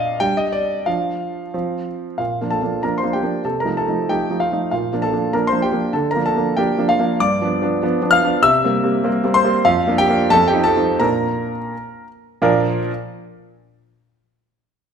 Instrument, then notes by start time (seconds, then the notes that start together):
grand piano
Already playing: A#2 D4 D#5 F5
0.20 G3 D4 G5
0.37 D#5
0.52 D5
0.86 F3 D4 F5
1.54 F3 C4
2.18 A#2 F4 F5
2.41 F3 A#3 D4
2.50 A4 A5
2.61 F3 A#3 D4
2.83 F3 A#3 D4 A#4 A#5
2.98 C5 C6
3.03 F3 A#3 D4
3.13 G4 G5
3.23 F3 A#3 D4
3.45 C3 A4 A5
3.60 A#4 A#5
3.65 F3 A3 D#4
3.77 A4 A5
3.88 F3 A3 D#4
4.09 F3 A3 D#4 G4 G5
4.30 F3 A3 D#4
4.40 F4 F5
4.52 F3 A3 D#4
4.71 A#2 F4 F5
4.93 F3 A#3 D4
5.02 A4 A5
5.12 F3 A#3 D4
5.33 F3 A#3 D4 A#4 A#5
5.47 C5 C6
5.52 F3 A#3 D4
5.62 G4 G5
5.72 F3 A#3 D4
5.93 D3 A4 A5
6.11 A#4 A#5
6.15 F3 A#3 D4
6.26 A4 A5
6.36 F3 A#3 D4
6.57 F3 A#3 D4 G4 G5
6.78 F3 A#3 D4
6.89 F4 F5
6.99 F3 A#3 D4
7.20 G2 D5 D6
7.42 F3 B3 D4
7.62 F3 B3 D4
7.83 F3 B3 D4
8.02 F3 B3 D4
8.11 F5 F6
8.23 F3 B3 D4
8.42 C3 E5 E6
8.64 G3 A#3 C4
8.84 G3 A#3 C4
9.04 G3 A#3 C4
9.24 G3 A#3 C4
9.34 C5 C6
9.44 G3 A#3 C4
9.65 F2 F4 F5
9.87 F3 A#3 D4
9.98 G4 G5
10.09 F3 A#3 D4
10.30 F2 A4 A5
10.48 G4 G5
10.53 F3 C4 D#4
10.64 A4 A5
10.76 F3 C4 D#4
11.00 A#2 A#3 D4 A#4 A#5
12.42 A#2 F3 D4 F4 A#4 D5